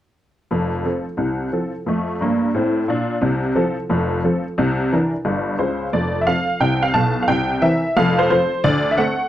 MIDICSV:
0, 0, Header, 1, 2, 480
1, 0, Start_track
1, 0, Key_signature, -1, "major"
1, 0, Tempo, 338983
1, 722, Time_signature, 4, 2, 24, 8
1, 13146, End_track
2, 0, Start_track
2, 0, Title_t, "Honky-tonk piano"
2, 0, Program_c, 0, 3
2, 719, Note_on_c, 0, 41, 66
2, 723, Note_on_c, 0, 29, 56
2, 964, Control_c, 0, 64, 127
2, 1129, Note_off_c, 0, 41, 0
2, 1131, Note_off_c, 0, 29, 0
2, 1194, Note_on_c, 0, 53, 40
2, 1206, Note_on_c, 0, 60, 41
2, 1211, Note_on_c, 0, 69, 43
2, 1223, Control_c, 0, 64, 0
2, 1460, Note_off_c, 0, 53, 0
2, 1469, Note_off_c, 0, 60, 0
2, 1473, Note_off_c, 0, 69, 0
2, 1661, Note_on_c, 0, 36, 56
2, 1663, Note_on_c, 0, 48, 52
2, 2078, Note_off_c, 0, 36, 0
2, 2079, Note_off_c, 0, 48, 0
2, 2154, Note_on_c, 0, 53, 33
2, 2162, Note_on_c, 0, 60, 43
2, 2169, Note_on_c, 0, 69, 42
2, 2421, Note_off_c, 0, 53, 0
2, 2426, Note_off_c, 0, 60, 0
2, 2431, Note_off_c, 0, 69, 0
2, 2638, Note_on_c, 0, 41, 58
2, 2668, Note_on_c, 0, 57, 59
2, 2901, Control_c, 0, 64, 127
2, 3024, Note_off_c, 0, 41, 0
2, 3041, Note_off_c, 0, 57, 0
2, 3126, Note_on_c, 0, 43, 73
2, 3133, Control_c, 0, 64, 0
2, 3146, Note_on_c, 0, 58, 69
2, 3508, Note_off_c, 0, 43, 0
2, 3520, Note_off_c, 0, 58, 0
2, 3603, Note_on_c, 0, 45, 68
2, 3629, Note_on_c, 0, 60, 64
2, 3986, Note_off_c, 0, 45, 0
2, 4002, Note_off_c, 0, 60, 0
2, 4079, Note_on_c, 0, 46, 69
2, 4104, Note_on_c, 0, 62, 65
2, 4464, Note_off_c, 0, 46, 0
2, 4479, Note_off_c, 0, 62, 0
2, 4553, Note_on_c, 0, 36, 65
2, 4553, Note_on_c, 0, 48, 77
2, 4815, Control_c, 0, 64, 127
2, 4964, Note_off_c, 0, 36, 0
2, 4965, Note_off_c, 0, 48, 0
2, 5034, Note_on_c, 0, 60, 54
2, 5035, Note_on_c, 0, 53, 54
2, 5042, Note_on_c, 0, 69, 60
2, 5056, Control_c, 0, 64, 0
2, 5300, Note_off_c, 0, 60, 0
2, 5301, Note_off_c, 0, 53, 0
2, 5306, Note_off_c, 0, 69, 0
2, 5516, Note_on_c, 0, 41, 72
2, 5521, Note_on_c, 0, 29, 71
2, 5927, Note_off_c, 0, 41, 0
2, 5929, Note_off_c, 0, 29, 0
2, 6004, Note_on_c, 0, 53, 48
2, 6010, Note_on_c, 0, 60, 49
2, 6016, Note_on_c, 0, 69, 51
2, 6267, Note_off_c, 0, 53, 0
2, 6272, Note_off_c, 0, 60, 0
2, 6276, Note_off_c, 0, 69, 0
2, 6484, Note_on_c, 0, 36, 68
2, 6485, Note_on_c, 0, 48, 85
2, 6723, Control_c, 0, 64, 127
2, 6892, Note_off_c, 0, 36, 0
2, 6892, Note_off_c, 0, 48, 0
2, 6975, Note_on_c, 0, 52, 47
2, 6977, Note_on_c, 0, 62, 51
2, 6980, Note_on_c, 0, 70, 56
2, 6984, Control_c, 0, 64, 0
2, 7235, Note_off_c, 0, 52, 0
2, 7237, Note_off_c, 0, 62, 0
2, 7239, Note_off_c, 0, 70, 0
2, 7433, Note_on_c, 0, 31, 75
2, 7437, Note_on_c, 0, 43, 66
2, 7845, Note_off_c, 0, 31, 0
2, 7847, Note_off_c, 0, 43, 0
2, 7910, Note_on_c, 0, 72, 58
2, 7915, Note_on_c, 0, 37, 57
2, 7916, Note_on_c, 0, 49, 58
2, 8302, Note_off_c, 0, 37, 0
2, 8303, Note_off_c, 0, 49, 0
2, 8396, Note_off_c, 0, 72, 0
2, 8398, Note_on_c, 0, 41, 61
2, 8399, Note_on_c, 0, 74, 68
2, 8404, Note_on_c, 0, 29, 59
2, 8646, Control_c, 0, 64, 127
2, 8796, Note_on_c, 0, 76, 61
2, 8798, Note_off_c, 0, 74, 0
2, 8808, Note_off_c, 0, 41, 0
2, 8811, Note_off_c, 0, 29, 0
2, 8872, Note_on_c, 0, 53, 35
2, 8875, Note_on_c, 0, 77, 82
2, 8880, Note_on_c, 0, 60, 41
2, 8881, Note_off_c, 0, 76, 0
2, 8884, Note_on_c, 0, 69, 42
2, 8902, Control_c, 0, 64, 0
2, 9139, Note_off_c, 0, 53, 0
2, 9145, Note_off_c, 0, 60, 0
2, 9148, Note_off_c, 0, 69, 0
2, 9350, Note_on_c, 0, 48, 66
2, 9351, Note_on_c, 0, 36, 63
2, 9354, Note_on_c, 0, 79, 83
2, 9359, Note_off_c, 0, 77, 0
2, 9665, Note_on_c, 0, 77, 80
2, 9672, Note_off_c, 0, 79, 0
2, 9763, Note_off_c, 0, 48, 0
2, 9764, Note_off_c, 0, 36, 0
2, 9823, Note_on_c, 0, 81, 83
2, 9825, Note_on_c, 0, 47, 59
2, 9830, Note_on_c, 0, 35, 65
2, 9837, Note_off_c, 0, 77, 0
2, 10216, Note_off_c, 0, 47, 0
2, 10219, Note_off_c, 0, 35, 0
2, 10230, Note_off_c, 0, 81, 0
2, 10230, Note_on_c, 0, 77, 61
2, 10305, Note_on_c, 0, 48, 67
2, 10306, Note_on_c, 0, 79, 85
2, 10313, Note_on_c, 0, 36, 74
2, 10318, Note_off_c, 0, 77, 0
2, 10563, Control_c, 0, 64, 127
2, 10720, Note_off_c, 0, 48, 0
2, 10725, Note_off_c, 0, 36, 0
2, 10787, Note_on_c, 0, 76, 85
2, 10791, Note_on_c, 0, 52, 51
2, 10793, Note_on_c, 0, 60, 45
2, 10794, Note_off_c, 0, 79, 0
2, 10803, Note_on_c, 0, 70, 47
2, 10824, Control_c, 0, 64, 0
2, 11058, Note_off_c, 0, 52, 0
2, 11060, Note_off_c, 0, 60, 0
2, 11067, Note_off_c, 0, 70, 0
2, 11274, Note_off_c, 0, 76, 0
2, 11279, Note_on_c, 0, 29, 68
2, 11279, Note_on_c, 0, 41, 80
2, 11280, Note_on_c, 0, 77, 89
2, 11530, Control_c, 0, 64, 127
2, 11591, Note_on_c, 0, 72, 81
2, 11594, Note_off_c, 0, 77, 0
2, 11688, Note_off_c, 0, 29, 0
2, 11688, Note_off_c, 0, 41, 0
2, 11736, Note_off_c, 0, 72, 0
2, 11756, Note_on_c, 0, 53, 43
2, 11758, Note_on_c, 0, 72, 83
2, 11763, Note_on_c, 0, 60, 44
2, 11768, Note_on_c, 0, 69, 47
2, 11778, Control_c, 0, 64, 0
2, 12021, Note_off_c, 0, 53, 0
2, 12026, Note_off_c, 0, 60, 0
2, 12030, Note_off_c, 0, 69, 0
2, 12232, Note_on_c, 0, 74, 92
2, 12235, Note_on_c, 0, 50, 70
2, 12239, Note_off_c, 0, 72, 0
2, 12240, Note_on_c, 0, 38, 72
2, 12492, Control_c, 0, 64, 127
2, 12620, Note_on_c, 0, 76, 76
2, 12633, Note_off_c, 0, 74, 0
2, 12645, Note_off_c, 0, 50, 0
2, 12648, Note_off_c, 0, 38, 0
2, 12708, Note_on_c, 0, 78, 86
2, 12709, Note_on_c, 0, 57, 47
2, 12710, Note_on_c, 0, 60, 48
2, 12712, Note_off_c, 0, 76, 0
2, 12722, Note_on_c, 0, 69, 52
2, 12737, Control_c, 0, 64, 0
2, 12976, Note_off_c, 0, 57, 0
2, 12977, Note_off_c, 0, 60, 0
2, 12985, Note_off_c, 0, 69, 0
2, 13146, Note_off_c, 0, 78, 0
2, 13146, End_track
0, 0, End_of_file